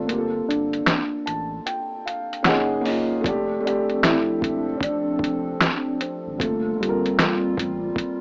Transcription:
0.06 G1 A#3 C4 F4, closed hi-hat
0.12 G4
0.18 A4
0.49 G1 D4, closed hi-hat
0.73 closed hi-hat
0.86 finger snap, snare, closed hi-hat
1.26 A1 A5, closed hi-hat
1.66 G5, closed hi-hat
2.06 F5, closed hi-hat
2.33 closed hi-hat
2.43 F#1 A#3 C#4 F#5, finger snap, snare, closed hi-hat
2.47 D#4 G#4
2.81 A#3 C#4 D#5
2.85 D#4 F4, open hi-hat
3.21 F1 F3 A3 C4 D4 A4, kick
3.26 D4 G4, closed hi-hat
3.60 A3 C4
3.65 D4 G4, closed hi-hat
3.90 closed hi-hat
4.03 E4, finger snap, snare, closed hi-hat
4.42 E1, kick, closed hi-hat
4.77 C#4, kick
4.83 D4, closed hi-hat
5.19 F1, kick
5.24 closed hi-hat
5.60 finger snap, snare, closed hi-hat
6.01 C4, closed hi-hat
6.27 G#1
6.38 G1 G3 A3 A#3 C4 F4, kick, closed hi-hat
6.42 F4 A4
6.76 G1 A#3 C4
6.81 G3 F4 A4, closed hi-hat
6.89 A#4
7.06 closed hi-hat
7.19 finger snap, snare, closed hi-hat
7.58 A1, kick, closed hi-hat
7.96 kick, closed hi-hat

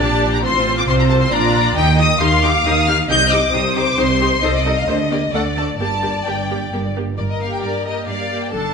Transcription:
Already playing: D5
0.00 A#1 A#2 D4 G4 A5
0.34 A#5
0.43 A1 A2 C4 F4 C5 C6
0.78 D6
0.88 C2 C3 C4 C5 C6
0.99 A#5
1.09 A5
1.21 C6
1.31 A#1 A#2 D4 F4 D5 A#5
1.76 D#2 D#3 D#4 G4 D#5 G5
1.98 D#4 G4 D#6
2.20 D#2 D#3 D#4 G4 F5 C6
2.43 D#4 G4 D6
2.65 D#2 D#3 D#4 G4 D#6
2.87 D#4 G4 F6
3.08 C2 C3 D#4 G4 D#5 G6
3.31 D#4 G4 D6
3.53 C2 C3 D#4 G4 C5 D#6
3.76 D#4 G4 D6
3.98 C2 C3 D#4 G4 C6
4.21 D#4 G4
4.42 C2 C3 D#4 A4 C5 D#5
4.55 D5
4.65 D#4 A4 D#5
4.78 F5
4.87 D2 D3 A#3 G4 C5
5.11 A#3 G4 D5
5.33 D2 D3 A3 A4 D5 F#5
5.57 A3 A4 A5
5.79 G1 G2 A#3 G4 D5 A5
6.03 A#3 G4
6.26 G1 G2 A#3 G4 G5
6.50 A#3 G4
6.72 G1 G2 A#3 G4
6.96 A#3 G4
7.18 G1 G2 A#4 D5
7.30 D#5
7.41 A#3 G4 F5
7.53 G5
7.63 G2 D5
7.86 A#3 G4 D#5
8.08 G2 D5 F5
8.31 A#3 G4
8.43 G5
8.53 F#1 F#2 D4 A4 A5

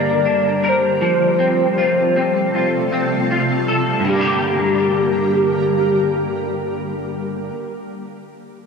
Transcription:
Already playing: G2 D3 G3 A#3 D4 G4 A#4 D5
0.25 D4
0.64 A#4
0.69 C5
1.01 C3 F3 A3 F4 A4
1.39 C4
1.78 F4
2.16 C4
2.55 F4
2.92 C4
3.31 F4
3.68 A4
3.99 G2
4.05 D3 G3 A#3 G4 A#4
4.09 G3
4.14 A#3 D4
4.21 G4

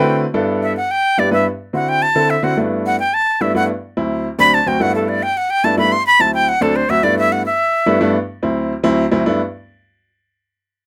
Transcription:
Already playing: G5
0.00 D3 A3 C4 E4 F#4 B4
0.34 G2 B3 D4 E4 A4
0.63 E5
0.77 F#5
0.91 G5
1.18 G2 B3 D4 E4 G4 D5
1.31 G2 B3 D4 E4 B4 E5
1.73 D3 C4 E4 F#4 F#5
1.89 G5
2.02 A5
2.15 D3 C4 E4 A4
2.30 E5
2.42 D3 C4 E4 F#4 F#5
2.57 G2 A3 B3 D4 E4
2.86 F#5
3.00 G5
3.14 A5
3.41 G2 A3 B3 D4 E4 E5
3.55 G2 A3 B3 D4 E4 F#5
3.97 D2 F#3 C4 E4
4.39 D2 F#3 C4 D4 B5
4.54 A5
4.66 D2 F#3 C4 F#4 G5
4.80 G2 A3 B3 D4 E4 F#5
4.95 A4
5.09 D5
5.23 G5
5.37 F#5
5.50 G5
5.64 G2 A3 B3 D4 E4 A5
5.77 G2 A3 B3 D4 E4 B5
5.92 C6
6.07 B5
6.19 D2 F#3 C4 E4 A5
6.34 G5
6.49 F#5
6.61 D2 F#3 C4 D4 A4
6.76 C5
6.89 D2 F#3 C4 F#4 E5
7.03 G2 A3 B3 D4 E4 D5
7.19 E5
7.32 F#5
7.46 E5
7.86 G2 A3 B3 D4 E4
8.01 G2 A3 B3 D4 E4
8.43 D2 F#3 C4 E4
8.83 D2 F#3 C4 E4
9.11 D2 F#3 C4 E4
9.26 G2 A3 B3 D4 E4

